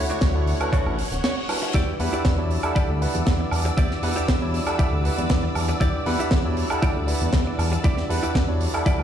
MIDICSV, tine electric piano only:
0, 0, Header, 1, 2, 480
1, 0, Start_track
1, 0, Tempo, 508475
1, 1645, Time_signature, 4, 2, 24, 8
1, 8526, End_track
2, 0, Start_track
2, 0, Title_t, "Tine electric piano"
2, 0, Program_c, 0, 4
2, 0, Note_on_c, 0, 57, 93
2, 0, Note_on_c, 0, 62, 80
2, 0, Note_on_c, 0, 64, 77
2, 0, Note_on_c, 0, 66, 81
2, 0, Note_on_c, 0, 73, 98
2, 299, Note_off_c, 0, 57, 0
2, 300, Note_off_c, 0, 62, 0
2, 302, Note_off_c, 0, 64, 0
2, 302, Note_off_c, 0, 66, 0
2, 304, Note_off_c, 0, 73, 0
2, 329, Note_on_c, 0, 57, 70
2, 331, Note_on_c, 0, 62, 68
2, 334, Note_on_c, 0, 64, 61
2, 336, Note_on_c, 0, 66, 63
2, 338, Note_on_c, 0, 74, 80
2, 540, Note_off_c, 0, 57, 0
2, 541, Note_off_c, 0, 62, 0
2, 542, Note_off_c, 0, 64, 0
2, 543, Note_off_c, 0, 66, 0
2, 544, Note_off_c, 0, 74, 0
2, 569, Note_on_c, 0, 57, 84
2, 571, Note_on_c, 0, 62, 76
2, 574, Note_on_c, 0, 64, 80
2, 577, Note_on_c, 0, 66, 79
2, 579, Note_on_c, 0, 71, 94
2, 897, Note_off_c, 0, 57, 0
2, 898, Note_off_c, 0, 62, 0
2, 900, Note_off_c, 0, 64, 0
2, 901, Note_off_c, 0, 66, 0
2, 902, Note_off_c, 0, 71, 0
2, 1401, Note_on_c, 0, 55, 79
2, 1404, Note_on_c, 0, 62, 72
2, 1407, Note_on_c, 0, 64, 72
2, 1410, Note_on_c, 0, 66, 73
2, 1411, Note_on_c, 0, 71, 83
2, 1856, Note_off_c, 0, 55, 0
2, 1858, Note_off_c, 0, 62, 0
2, 1859, Note_off_c, 0, 64, 0
2, 1860, Note_off_c, 0, 66, 0
2, 1861, Note_off_c, 0, 71, 0
2, 1883, Note_on_c, 0, 55, 85
2, 1885, Note_on_c, 0, 62, 77
2, 1888, Note_on_c, 0, 64, 79
2, 1890, Note_on_c, 0, 78, 83
2, 1893, Note_on_c, 0, 71, 96
2, 2220, Note_off_c, 0, 55, 0
2, 2221, Note_off_c, 0, 62, 0
2, 2222, Note_off_c, 0, 64, 0
2, 2223, Note_off_c, 0, 78, 0
2, 2225, Note_off_c, 0, 71, 0
2, 2247, Note_on_c, 0, 55, 69
2, 2248, Note_on_c, 0, 62, 67
2, 2251, Note_on_c, 0, 64, 65
2, 2253, Note_on_c, 0, 66, 65
2, 2256, Note_on_c, 0, 73, 76
2, 2459, Note_off_c, 0, 55, 0
2, 2459, Note_off_c, 0, 62, 0
2, 2461, Note_off_c, 0, 64, 0
2, 2462, Note_off_c, 0, 66, 0
2, 2463, Note_off_c, 0, 73, 0
2, 2488, Note_on_c, 0, 55, 86
2, 2489, Note_on_c, 0, 62, 79
2, 2491, Note_on_c, 0, 64, 83
2, 2493, Note_on_c, 0, 78, 77
2, 2497, Note_on_c, 0, 69, 99
2, 2816, Note_off_c, 0, 55, 0
2, 2817, Note_off_c, 0, 62, 0
2, 2818, Note_off_c, 0, 64, 0
2, 2819, Note_off_c, 0, 78, 0
2, 2821, Note_off_c, 0, 69, 0
2, 2838, Note_on_c, 0, 55, 71
2, 2842, Note_on_c, 0, 62, 68
2, 2846, Note_on_c, 0, 64, 68
2, 2852, Note_on_c, 0, 78, 70
2, 2856, Note_on_c, 0, 71, 79
2, 3774, Note_off_c, 0, 55, 0
2, 3776, Note_off_c, 0, 62, 0
2, 3778, Note_off_c, 0, 64, 0
2, 3781, Note_off_c, 0, 78, 0
2, 3783, Note_off_c, 0, 71, 0
2, 3801, Note_on_c, 0, 55, 86
2, 3804, Note_on_c, 0, 62, 78
2, 3806, Note_on_c, 0, 64, 82
2, 3808, Note_on_c, 0, 78, 79
2, 3811, Note_on_c, 0, 71, 94
2, 4139, Note_off_c, 0, 55, 0
2, 4140, Note_off_c, 0, 62, 0
2, 4141, Note_off_c, 0, 64, 0
2, 4142, Note_off_c, 0, 78, 0
2, 4144, Note_off_c, 0, 71, 0
2, 4168, Note_on_c, 0, 55, 71
2, 4170, Note_on_c, 0, 62, 67
2, 4173, Note_on_c, 0, 64, 65
2, 4176, Note_on_c, 0, 66, 67
2, 4178, Note_on_c, 0, 73, 81
2, 4379, Note_off_c, 0, 55, 0
2, 4381, Note_off_c, 0, 62, 0
2, 4382, Note_off_c, 0, 64, 0
2, 4383, Note_off_c, 0, 66, 0
2, 4384, Note_off_c, 0, 73, 0
2, 4407, Note_on_c, 0, 55, 88
2, 4409, Note_on_c, 0, 62, 83
2, 4411, Note_on_c, 0, 64, 80
2, 4414, Note_on_c, 0, 78, 77
2, 4416, Note_on_c, 0, 69, 95
2, 4736, Note_off_c, 0, 55, 0
2, 4737, Note_off_c, 0, 62, 0
2, 4738, Note_off_c, 0, 64, 0
2, 4739, Note_off_c, 0, 78, 0
2, 4741, Note_off_c, 0, 69, 0
2, 4758, Note_on_c, 0, 55, 74
2, 4762, Note_on_c, 0, 62, 64
2, 4767, Note_on_c, 0, 64, 66
2, 4772, Note_on_c, 0, 78, 68
2, 4776, Note_on_c, 0, 71, 84
2, 5694, Note_off_c, 0, 55, 0
2, 5697, Note_off_c, 0, 62, 0
2, 5699, Note_off_c, 0, 64, 0
2, 5701, Note_off_c, 0, 78, 0
2, 5703, Note_off_c, 0, 71, 0
2, 5718, Note_on_c, 0, 55, 91
2, 5721, Note_on_c, 0, 62, 77
2, 5723, Note_on_c, 0, 64, 79
2, 5725, Note_on_c, 0, 78, 82
2, 5727, Note_on_c, 0, 71, 98
2, 6057, Note_off_c, 0, 55, 0
2, 6059, Note_off_c, 0, 62, 0
2, 6060, Note_off_c, 0, 64, 0
2, 6061, Note_off_c, 0, 78, 0
2, 6062, Note_off_c, 0, 71, 0
2, 6083, Note_on_c, 0, 55, 74
2, 6085, Note_on_c, 0, 62, 65
2, 6088, Note_on_c, 0, 64, 65
2, 6089, Note_on_c, 0, 66, 65
2, 6092, Note_on_c, 0, 73, 83
2, 6297, Note_off_c, 0, 55, 0
2, 6298, Note_off_c, 0, 62, 0
2, 6299, Note_off_c, 0, 64, 0
2, 6300, Note_off_c, 0, 66, 0
2, 6302, Note_off_c, 0, 73, 0
2, 6323, Note_on_c, 0, 55, 91
2, 6326, Note_on_c, 0, 62, 81
2, 6328, Note_on_c, 0, 64, 81
2, 6330, Note_on_c, 0, 78, 78
2, 6333, Note_on_c, 0, 69, 99
2, 6654, Note_off_c, 0, 55, 0
2, 6655, Note_off_c, 0, 62, 0
2, 6656, Note_off_c, 0, 64, 0
2, 6657, Note_off_c, 0, 78, 0
2, 6659, Note_off_c, 0, 69, 0
2, 6673, Note_on_c, 0, 55, 74
2, 6677, Note_on_c, 0, 62, 66
2, 6682, Note_on_c, 0, 64, 72
2, 6687, Note_on_c, 0, 78, 70
2, 6692, Note_on_c, 0, 71, 81
2, 7612, Note_off_c, 0, 55, 0
2, 7614, Note_off_c, 0, 62, 0
2, 7616, Note_off_c, 0, 64, 0
2, 7619, Note_off_c, 0, 78, 0
2, 7621, Note_off_c, 0, 71, 0
2, 7640, Note_on_c, 0, 55, 87
2, 7641, Note_on_c, 0, 62, 85
2, 7644, Note_on_c, 0, 64, 79
2, 7647, Note_on_c, 0, 78, 84
2, 7649, Note_on_c, 0, 71, 93
2, 7978, Note_off_c, 0, 55, 0
2, 7979, Note_off_c, 0, 62, 0
2, 7981, Note_off_c, 0, 64, 0
2, 7982, Note_off_c, 0, 78, 0
2, 7983, Note_off_c, 0, 71, 0
2, 8008, Note_on_c, 0, 55, 72
2, 8009, Note_on_c, 0, 62, 69
2, 8013, Note_on_c, 0, 64, 66
2, 8014, Note_on_c, 0, 66, 64
2, 8017, Note_on_c, 0, 73, 78
2, 8220, Note_off_c, 0, 55, 0
2, 8220, Note_off_c, 0, 62, 0
2, 8222, Note_off_c, 0, 64, 0
2, 8222, Note_off_c, 0, 66, 0
2, 8224, Note_off_c, 0, 73, 0
2, 8245, Note_on_c, 0, 55, 88
2, 8247, Note_on_c, 0, 62, 80
2, 8249, Note_on_c, 0, 64, 83
2, 8252, Note_on_c, 0, 78, 79
2, 8255, Note_on_c, 0, 69, 99
2, 8526, Note_off_c, 0, 55, 0
2, 8526, Note_off_c, 0, 62, 0
2, 8526, Note_off_c, 0, 64, 0
2, 8526, Note_off_c, 0, 69, 0
2, 8526, Note_off_c, 0, 78, 0
2, 8526, End_track
0, 0, End_of_file